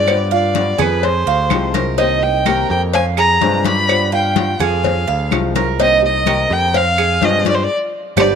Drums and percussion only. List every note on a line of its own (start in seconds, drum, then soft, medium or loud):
0.07 cowbell loud
0.07 high conga soft
0.07 claves medium
0.31 high conga soft
0.55 cowbell medium
0.55 high conga medium
0.79 high conga soft
0.79 low conga medium
0.79 claves medium
1.03 cowbell loud
1.03 high conga soft
1.27 high conga soft
1.50 cowbell medium
1.50 high conga medium
1.50 claves medium
1.74 cowbell medium
1.74 high conga medium
1.98 cowbell loud
1.98 high conga soft
2.22 high conga soft
2.46 cowbell medium
2.46 high conga medium
2.46 claves medium
2.69 high conga soft
2.94 cowbell loud
2.94 high conga soft
3.17 high conga soft
3.17 claves medium
3.41 cowbell medium
3.41 high conga medium
3.65 cowbell medium
3.65 high conga medium
3.89 cowbell loud
3.89 high conga soft
3.89 claves medium
4.12 high conga soft
4.36 cowbell medium
4.36 high conga medium
4.60 high conga soft
4.60 low conga medium
4.60 claves medium
4.84 cowbell loud
4.84 high conga soft
4.84 low conga medium
5.08 high conga soft
5.31 cowbell medium
5.31 high conga medium
5.31 claves medium
5.55 cowbell medium
5.55 high conga medium
5.79 cowbell loud
5.79 high conga soft
6.02 high conga soft
6.26 cowbell medium
6.26 high conga medium
6.26 claves medium
6.50 high conga soft
6.74 cowbell loud
6.74 high conga soft
6.98 high conga soft
6.98 claves medium
7.22 cowbell medium
7.22 high conga medium
7.45 cowbell medium
7.45 high conga medium
8.17 cowbell loud
8.17 high conga medium
8.17 claves loud